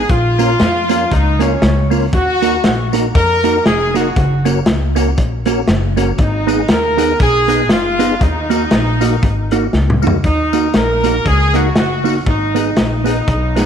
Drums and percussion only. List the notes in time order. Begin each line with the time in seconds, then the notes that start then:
0.09 kick, closed hi-hat
0.39 closed hi-hat, tambourine
0.59 snare, closed hi-hat
0.89 closed hi-hat, tambourine
1.12 kick, closed hi-hat
1.40 closed hi-hat, tambourine
1.62 snare, closed hi-hat
1.91 open hi-hat, tambourine
2.13 kick, closed hi-hat
2.42 closed hi-hat, tambourine
2.64 snare, closed hi-hat
2.93 closed hi-hat, tambourine
3.15 kick, closed hi-hat
3.44 closed hi-hat, tambourine
3.66 snare, closed hi-hat
3.95 closed hi-hat, tambourine
4.16 kick, closed hi-hat
4.45 closed hi-hat, tambourine
4.66 snare, closed hi-hat
4.96 closed hi-hat, tambourine
5.17 kick, closed hi-hat
5.45 closed hi-hat, tambourine
5.68 snare, closed hi-hat
5.97 closed hi-hat, tambourine
6.18 kick, closed hi-hat
6.48 closed hi-hat, tambourine
6.68 snare, closed hi-hat
6.98 closed hi-hat, tambourine
7.20 kick, closed hi-hat
7.48 closed hi-hat, tambourine
7.69 snare, closed hi-hat
7.99 closed hi-hat, tambourine
8.21 kick, closed hi-hat
8.50 closed hi-hat, tambourine
8.71 snare, closed hi-hat
9.01 closed hi-hat, tambourine
9.23 kick, closed hi-hat
9.51 closed hi-hat, tambourine
9.73 snare
9.90 mid tom
10.02 tambourine
10.07 floor tom
10.24 kick, closed hi-hat
10.53 closed hi-hat, tambourine
10.74 snare, closed hi-hat
11.04 closed hi-hat, tambourine
11.25 kick, closed hi-hat
11.54 closed hi-hat, tambourine
11.76 snare, closed hi-hat
12.05 open hi-hat, tambourine
12.26 kick, closed hi-hat
12.56 closed hi-hat, tambourine
12.76 snare, closed hi-hat
13.06 closed hi-hat, tambourine
13.28 kick, closed hi-hat
13.56 snare, closed hi-hat, tambourine